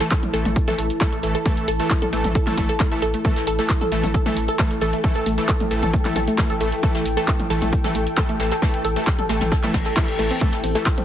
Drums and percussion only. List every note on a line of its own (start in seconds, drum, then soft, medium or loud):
0.00 snare medium
0.00 closed hi-hat medium
0.00 shaker soft
0.11 kick loud
0.11 snare loud
0.11 clap loud
0.11 closed hi-hat medium
0.11 shaker soft
0.11 shaker medium
0.23 closed hi-hat medium
0.23 mid tom loud
0.23 shaker soft
0.33 snare medium
0.33 open hi-hat loud
0.33 shaker medium
0.45 closed hi-hat soft
0.45 closed hi-hat medium
0.45 mid tom medium
0.45 shaker soft
0.56 kick loud
0.56 closed hi-hat medium
0.56 shaker medium
0.56 shaker soft
0.68 snare soft
0.68 closed hi-hat medium
0.68 mid tom medium
0.78 open hi-hat loud
0.78 shaker medium
0.90 closed hi-hat medium
0.90 shaker soft
1.00 kick loud
1.00 snare loud
1.00 clap loud
1.00 closed hi-hat medium
1.00 shaker medium
1.00 shaker soft
1.13 closed hi-hat medium
1.13 shaker soft
1.22 open hi-hat loud
1.22 shaker medium
1.35 closed hi-hat medium
1.35 shaker soft
1.45 kick loud
1.45 closed hi-hat medium
1.45 shaker medium
1.45 shaker soft
1.57 closed hi-hat medium
1.57 shaker soft
1.68 open hi-hat loud
1.68 shaker medium
1.80 snare soft
1.80 closed hi-hat medium
1.80 shaker soft
1.90 kick loud
1.90 snare loud
1.90 clap loud
1.90 closed hi-hat medium
1.90 shaker soft
1.90 shaker loud
2.02 closed hi-hat medium
2.02 mid tom loud
2.02 shaker soft
2.13 open hi-hat loud
2.13 shaker medium
2.24 closed hi-hat medium
2.24 mid tom medium
2.24 shaker soft
2.35 kick loud
2.35 closed hi-hat medium
2.35 shaker medium
2.35 shaker soft
2.46 clap soft
2.46 closed hi-hat soft
2.46 closed hi-hat medium
2.46 mid tom medium
2.46 shaker soft
2.57 kick medium
2.57 snare soft
2.57 open hi-hat loud
2.57 mid tom medium
2.57 shaker medium
2.68 snare soft
2.68 closed hi-hat medium
2.68 shaker soft
2.79 kick loud
2.79 snare loud
2.79 clap loud
2.79 closed hi-hat medium
2.79 shaker soft
2.79 shaker loud
2.92 closed hi-hat medium
2.92 shaker soft
3.01 open hi-hat loud
3.01 shaker medium
3.14 closed hi-hat medium
3.14 shaker soft
3.24 kick loud
3.24 closed hi-hat medium
3.24 shaker medium
3.24 shaker soft
3.36 snare medium
3.36 closed hi-hat medium
3.36 shaker soft
3.47 open hi-hat loud
3.47 shaker medium
3.59 snare medium
3.59 closed hi-hat medium
3.59 shaker soft
3.69 kick loud
3.69 snare loud
3.69 clap loud
3.69 closed hi-hat medium
3.69 shaker soft
3.69 shaker medium
3.81 closed hi-hat medium
3.81 mid tom loud
3.81 shaker soft
3.92 snare medium
3.92 open hi-hat loud
3.92 shaker medium
4.04 closed hi-hat medium
4.04 closed hi-hat soft
4.04 mid tom medium
4.04 shaker soft
4.14 kick loud
4.14 closed hi-hat medium
4.14 shaker soft
4.14 shaker medium
4.26 snare soft
4.26 closed hi-hat medium
4.26 mid tom medium
4.37 open hi-hat loud
4.37 shaker medium
4.48 closed hi-hat medium
4.48 shaker soft
4.59 kick loud
4.59 snare loud
4.59 clap loud
4.59 closed hi-hat medium
4.59 shaker soft
4.59 shaker medium
4.71 closed hi-hat medium
4.71 shaker soft
4.81 open hi-hat loud
4.81 shaker medium
4.93 closed hi-hat medium
4.93 shaker soft
5.04 kick loud
5.04 closed hi-hat medium
5.04 shaker soft
5.04 shaker medium
5.15 closed hi-hat medium
5.15 shaker soft
5.26 open hi-hat loud
5.26 shaker medium
5.38 snare soft
5.38 closed hi-hat medium
5.38 shaker soft
5.48 kick loud
5.48 snare loud
5.48 clap loud
5.48 closed hi-hat medium
5.48 shaker medium
5.48 shaker soft
5.60 closed hi-hat medium
5.60 mid tom loud
5.60 shaker soft
5.71 open hi-hat loud
5.71 shaker medium
5.83 closed hi-hat medium
5.83 mid tom medium
5.83 shaker soft
5.93 kick loud
5.93 closed hi-hat medium
5.93 shaker medium
5.93 shaker soft
6.05 clap soft
6.05 closed hi-hat medium
6.05 closed hi-hat soft
6.05 mid tom medium
6.05 shaker soft
6.15 snare soft
6.15 open hi-hat loud
6.15 mid tom medium
6.15 shaker medium
6.27 snare soft
6.27 closed hi-hat medium
6.27 shaker soft
6.38 kick loud
6.38 snare loud
6.38 clap loud
6.38 closed hi-hat medium
6.38 shaker medium
6.38 shaker soft
6.50 closed hi-hat medium
6.50 shaker soft
6.61 open hi-hat loud
6.61 shaker medium
6.72 closed hi-hat medium
6.72 shaker soft
6.83 kick loud
6.83 closed hi-hat medium
6.83 shaker medium
6.83 shaker soft
6.95 snare medium
6.95 closed hi-hat medium
6.95 shaker soft
7.05 open hi-hat loud
7.05 shaker medium
7.17 snare medium
7.17 closed hi-hat medium
7.17 shaker soft
7.28 kick loud
7.28 snare loud
7.28 clap loud
7.28 closed hi-hat medium
7.28 shaker soft
7.28 shaker loud
7.40 closed hi-hat medium
7.40 mid tom medium
7.40 shaker soft
7.50 snare medium
7.50 open hi-hat loud
7.50 shaker medium
7.61 closed hi-hat soft
7.61 closed hi-hat medium
7.61 mid tom medium
7.61 shaker soft
7.73 kick loud
7.73 closed hi-hat medium
7.73 shaker soft
7.73 shaker medium
7.84 snare soft
7.84 closed hi-hat medium
7.84 mid tom medium
7.95 open hi-hat loud
7.95 shaker medium
8.07 closed hi-hat medium
8.07 shaker soft
8.17 kick loud
8.17 snare loud
8.17 clap loud
8.17 closed hi-hat medium
8.17 shaker soft
8.17 shaker loud
8.29 closed hi-hat medium
8.29 shaker soft
8.40 snare loud
8.40 open hi-hat loud
8.40 shaker medium
8.51 snare loud
8.51 closed hi-hat medium
8.51 shaker medium
8.51 shaker soft
8.62 kick loud
8.62 snare loud
8.62 closed hi-hat medium
8.62 shaker medium
8.62 shaker soft
8.74 closed hi-hat medium
8.74 shaker soft
8.84 open hi-hat loud
8.84 shaker medium
8.96 snare soft
8.96 closed hi-hat medium
8.96 shaker soft
9.07 kick loud
9.07 snare loud
9.07 clap loud
9.07 closed hi-hat medium
9.07 shaker medium
9.07 shaker soft
9.19 closed hi-hat medium
9.19 mid tom medium
9.19 shaker soft
9.29 snare loud
9.29 open hi-hat loud
9.29 shaker medium
9.41 snare loud
9.41 closed hi-hat medium
9.41 mid tom medium
9.41 shaker medium
9.41 shaker soft
9.52 kick loud
9.52 snare loud
9.52 closed hi-hat medium
9.52 shaker soft
9.52 shaker medium
9.63 snare loud
9.63 clap soft
9.63 closed hi-hat medium
9.63 mid tom medium
9.63 shaker medium
9.63 shaker soft
9.74 kick medium
9.74 snare loud
9.74 open hi-hat loud
9.74 mid tom medium
9.74 shaker medium
9.85 snare soft
9.85 closed hi-hat medium
9.85 shaker soft
9.85 shaker medium
9.96 kick loud
9.96 snare loud
9.96 clap loud
9.96 closed hi-hat medium
9.96 shaker medium
9.96 shaker soft
10.08 closed hi-hat medium
10.08 shaker soft
10.19 open hi-hat loud
10.19 shaker medium
10.31 closed hi-hat medium
10.31 shaker soft
10.41 kick loud
10.41 closed hi-hat medium
10.41 ride medium
10.41 shaker medium
10.41 shaker soft
10.52 snare medium
10.52 closed hi-hat medium
10.52 ride medium
10.52 shaker soft
10.63 open hi-hat loud
10.63 ride medium
10.63 shaker medium
10.75 snare medium
10.75 closed hi-hat medium
10.75 ride medium
10.75 shaker soft
10.86 kick loud
10.86 snare loud
10.86 clap loud
10.86 closed hi-hat medium
10.86 ride medium
10.86 shaker medium
10.86 shaker soft
10.98 closed hi-hat medium
10.98 mid tom medium
10.98 ride medium
10.98 shaker soft